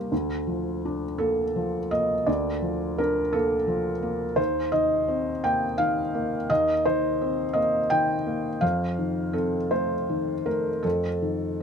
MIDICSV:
0, 0, Header, 1, 2, 480
1, 0, Start_track
1, 0, Tempo, 721154
1, 73, Time_signature, 6, 3, 24, 8
1, 1512, Tempo, 705882
1, 5832, Tempo, 744417
1, 7768, End_track
2, 0, Start_track
2, 0, Title_t, "Felt piano"
2, 0, Program_c, 0, 0
2, 0, Control_c, 0, 64, 127
2, 0, Note_on_c, 0, 55, 33
2, 0, Note_on_c, 0, 58, 34
2, 0, Note_on_c, 0, 62, 32
2, 0, Note_on_c, 0, 70, 44
2, 0, Note_on_c, 0, 72, 56
2, 71, Note_off_c, 0, 70, 0
2, 76, Note_off_c, 0, 58, 0
2, 79, Note_on_c, 0, 38, 41
2, 87, Control_c, 0, 64, 0
2, 89, Note_off_c, 0, 62, 0
2, 91, Note_off_c, 0, 55, 0
2, 93, Note_off_c, 0, 72, 0
2, 187, Control_c, 0, 64, 127
2, 314, Note_on_c, 0, 53, 35
2, 568, Note_on_c, 0, 62, 33
2, 697, Note_off_c, 0, 53, 0
2, 788, Note_on_c, 0, 69, 60
2, 796, Note_on_c, 0, 58, 34
2, 946, Note_off_c, 0, 62, 0
2, 1038, Note_on_c, 0, 53, 36
2, 1181, Note_off_c, 0, 58, 0
2, 1273, Note_off_c, 0, 69, 0
2, 1273, Note_on_c, 0, 75, 63
2, 1277, Note_on_c, 0, 58, 35
2, 1419, Note_off_c, 0, 53, 0
2, 1489, Note_off_c, 0, 38, 0
2, 1508, Note_on_c, 0, 74, 57
2, 1511, Note_off_c, 0, 75, 0
2, 1513, Note_on_c, 0, 38, 45
2, 1526, Control_c, 0, 64, 0
2, 1653, Control_c, 0, 64, 127
2, 1658, Note_off_c, 0, 58, 0
2, 1749, Note_on_c, 0, 53, 36
2, 1991, Note_off_c, 0, 74, 0
2, 1997, Note_on_c, 0, 70, 66
2, 2007, Note_on_c, 0, 62, 40
2, 2135, Note_off_c, 0, 53, 0
2, 2229, Note_on_c, 0, 69, 69
2, 2234, Note_off_c, 0, 70, 0
2, 2240, Note_on_c, 0, 58, 38
2, 2383, Note_off_c, 0, 62, 0
2, 2465, Note_on_c, 0, 53, 40
2, 2618, Note_off_c, 0, 58, 0
2, 2704, Note_on_c, 0, 58, 39
2, 2848, Note_off_c, 0, 53, 0
2, 2920, Note_off_c, 0, 38, 0
2, 2933, Note_on_c, 0, 72, 72
2, 2940, Note_on_c, 0, 39, 50
2, 2944, Note_off_c, 0, 58, 0
2, 2945, Note_off_c, 0, 69, 0
2, 2958, Control_c, 0, 64, 0
2, 3079, Control_c, 0, 64, 127
2, 3176, Note_on_c, 0, 75, 76
2, 3178, Note_off_c, 0, 72, 0
2, 3185, Note_on_c, 0, 51, 40
2, 3423, Note_on_c, 0, 60, 39
2, 3566, Note_off_c, 0, 51, 0
2, 3657, Note_off_c, 0, 75, 0
2, 3665, Note_on_c, 0, 79, 75
2, 3670, Note_on_c, 0, 58, 42
2, 3804, Note_off_c, 0, 60, 0
2, 3897, Note_on_c, 0, 77, 83
2, 3902, Note_off_c, 0, 79, 0
2, 3906, Note_on_c, 0, 51, 43
2, 4049, Note_off_c, 0, 58, 0
2, 4146, Note_on_c, 0, 58, 42
2, 4289, Note_off_c, 0, 51, 0
2, 4353, Note_off_c, 0, 39, 0
2, 4382, Note_off_c, 0, 77, 0
2, 4385, Note_on_c, 0, 75, 82
2, 4389, Note_on_c, 0, 39, 52
2, 4397, Control_c, 0, 64, 0
2, 4494, Control_c, 0, 64, 127
2, 4532, Note_off_c, 0, 58, 0
2, 4627, Note_off_c, 0, 75, 0
2, 4628, Note_on_c, 0, 72, 74
2, 4639, Note_on_c, 0, 51, 44
2, 4875, Note_on_c, 0, 60, 44
2, 5019, Note_off_c, 0, 51, 0
2, 5091, Note_on_c, 0, 75, 74
2, 5102, Note_on_c, 0, 58, 42
2, 5110, Note_off_c, 0, 72, 0
2, 5258, Note_off_c, 0, 60, 0
2, 5340, Note_on_c, 0, 79, 83
2, 5342, Note_off_c, 0, 75, 0
2, 5350, Note_on_c, 0, 51, 43
2, 5492, Note_off_c, 0, 58, 0
2, 5588, Note_on_c, 0, 58, 42
2, 5735, Note_off_c, 0, 51, 0
2, 5807, Note_off_c, 0, 39, 0
2, 5822, Note_on_c, 0, 77, 80
2, 5826, Note_off_c, 0, 79, 0
2, 5828, Note_on_c, 0, 41, 53
2, 5830, Note_off_c, 0, 58, 0
2, 5843, Control_c, 0, 64, 0
2, 5958, Control_c, 0, 64, 127
2, 6064, Note_on_c, 0, 51, 41
2, 6288, Note_on_c, 0, 69, 61
2, 6290, Note_on_c, 0, 60, 41
2, 6293, Note_off_c, 0, 77, 0
2, 6442, Note_off_c, 0, 51, 0
2, 6531, Note_on_c, 0, 72, 62
2, 6533, Note_off_c, 0, 69, 0
2, 6535, Note_on_c, 0, 57, 36
2, 6678, Note_off_c, 0, 60, 0
2, 6780, Note_on_c, 0, 51, 39
2, 6922, Note_off_c, 0, 57, 0
2, 7014, Note_on_c, 0, 70, 59
2, 7017, Note_off_c, 0, 72, 0
2, 7020, Note_on_c, 0, 57, 37
2, 7166, Note_off_c, 0, 51, 0
2, 7235, Note_off_c, 0, 41, 0
2, 7252, Note_on_c, 0, 69, 56
2, 7259, Note_off_c, 0, 70, 0
2, 7263, Note_on_c, 0, 41, 45
2, 7273, Control_c, 0, 64, 0
2, 7375, Control_c, 0, 64, 127
2, 7408, Note_off_c, 0, 57, 0
2, 7507, Note_on_c, 0, 51, 34
2, 7768, Note_off_c, 0, 41, 0
2, 7768, Note_off_c, 0, 51, 0
2, 7768, Note_off_c, 0, 69, 0
2, 7768, End_track
0, 0, End_of_file